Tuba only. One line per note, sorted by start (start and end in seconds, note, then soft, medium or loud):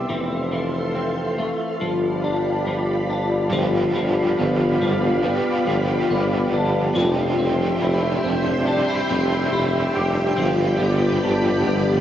0.09 1.50 F1 medium
1.81 3.48 G1 medium
3.52 3.90 G1 loud
3.95 4.33 G1 medium
4.38 4.76 G1 loud
4.81 5.38 G1 loud
5.66 6.04 G1 medium
6.10 6.47 G1 loud
6.52 6.90 G1 medium
6.95 7.33 F1 loud
7.38 7.76 F1 loud
7.81 8.19 F1 loud
8.24 8.80 F1 medium
9.10 9.47 F1 medium
9.52 9.90 F1 medium
9.95 10.33 F1 medium
10.38 10.76 G1 loud
10.81 11.19 G1 loud
11.24 11.62 G1 loud
11.66 12.01 G1 loud